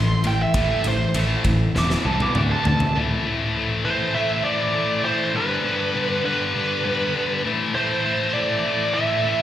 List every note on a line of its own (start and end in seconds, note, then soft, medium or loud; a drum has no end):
0.00 0.14 A1 medium
0.00 0.21 A2 medium
0.00 0.22 E3 medium
0.00 1.71 A3 medium
0.00 2.30 E4 medium
0.00 1.71 C5 medium
0.00 0.24 C6 loud
0.24 0.44 A1 medium
0.24 0.51 A2 medium
0.24 0.52 E3 medium
0.24 0.40 G5 medium
0.24 ride medium
0.43 0.85 E5 medium
0.54 0.74 A1 medium
0.54 0.83 A2 medium
0.54 0.83 E3 medium
0.54 0.83 A3 medium
0.54 kick loud
0.54 ride loud
0.84 1.05 A1 medium
0.84 1.12 A2 medium
0.84 1.12 E3 medium
0.84 1.15 C5 loud
0.84 ride medium
1.14 1.34 A1 loud
1.14 1.43 A2 medium
1.14 1.43 E3 loud
1.14 1.43 A3 medium
1.14 ride medium
1.44 1.65 A1 medium
1.44 1.72 A2 medium
1.44 1.72 E3 loud
1.44 kick medium
1.44 ride medium
1.74 1.95 E1 loud
1.74 2.03 E2 loud
1.74 2.03 B2 loud
1.74 2.04 E3 loud
1.74 2.34 B4 medium
1.74 2.34 E5 medium
1.74 snare medium
1.78 1.91 D6 loud
1.90 snare medium
2.05 2.25 C2 medium
2.05 2.33 E2 medium
2.05 2.34 B2 loud
2.05 2.34 E3 loud
2.05 2.20 A5 medium
2.20 2.36 D6 loud
2.20 high tom medium
2.34 2.55 D2 medium
2.34 2.63 D3 medium
2.34 2.63 A3 loud
2.34 2.63 D4 loud
2.34 2.94 D4 medium
2.34 2.94 A4 medium
2.34 2.94 E5 medium
2.34 mid tom medium
2.52 2.65 A5 medium
2.65 2.85 D2 medium
2.65 2.92 D3 medium
2.65 2.92 A3 medium
2.65 2.95 A5 medium
2.65 floor tom loud
2.80 floor tom medium
2.95 3.24 A2 medium
2.95 3.25 E3 loud
2.95 5.32 A3 medium
2.95 3.26 A3 medium
2.95 5.33 E4 medium
2.95 5.33 C5 medium
3.26 3.54 A2 medium
3.26 3.55 E3 medium
3.26 3.55 A3 medium
3.55 3.84 A2 medium
3.55 3.84 E3 medium
3.55 3.85 A3 medium
3.85 4.14 A2 medium
3.85 4.14 E3 loud
3.85 4.15 A3 loud
3.85 4.16 C5 medium
4.14 4.43 A2 loud
4.14 4.43 E3 loud
4.14 4.44 A3 loud
4.14 4.44 E5 loud
4.44 4.73 A2 medium
4.44 4.74 E3 medium
4.44 4.74 A3 medium
4.44 5.01 D5 loud
4.74 5.02 A2 medium
4.74 5.03 E3 medium
4.74 5.04 A3 loud
5.04 5.32 A2 medium
5.04 5.33 E3 medium
5.04 5.33 A3 medium
5.04 5.36 C5 medium
5.35 5.62 G2 loud
5.35 5.63 D3 loud
5.35 5.64 G3 loud
5.35 7.43 G3 medium
5.35 7.43 D4 medium
5.35 7.43 A4 medium
5.35 6.21 B4 loud
5.63 5.93 G2 medium
5.63 5.93 D3 medium
5.63 5.94 G3 medium
5.94 6.23 G2 medium
5.94 6.23 D3 medium
5.94 6.24 G3 medium
6.24 6.53 G2 medium
6.24 6.54 D3 loud
6.24 6.55 G3 medium
6.24 7.41 B4 medium
6.54 6.83 G2 loud
6.54 6.84 D3 loud
6.54 6.84 G3 loud
6.84 7.13 G2 medium
6.84 7.14 D3 medium
6.84 7.15 G3 loud
7.14 7.42 G2 medium
7.14 7.43 D3 loud
7.14 7.43 G3 medium
7.44 7.73 A2 loud
7.44 7.74 E3 loud
7.44 7.75 A3 loud
7.44 9.42 A3 medium
7.44 9.42 E4 medium
7.44 9.42 C5 medium
7.74 8.03 A2 loud
7.74 8.04 E3 medium
7.74 8.05 A3 loud
7.74 8.36 C5 medium
8.04 8.33 A2 medium
8.04 8.34 E3 medium
8.04 8.35 A3 loud
8.33 8.63 A2 medium
8.33 8.64 E3 medium
8.33 8.66 A3 medium
8.33 8.94 D5 loud
8.65 8.93 A2 medium
8.65 8.93 E3 loud
8.65 8.95 A3 loud
8.94 9.22 A2 medium
8.94 9.23 E3 loud
8.94 9.25 A3 loud
8.94 9.42 E5 medium
9.23 9.42 A2 medium
9.23 9.42 E3 medium
9.23 9.42 A3 medium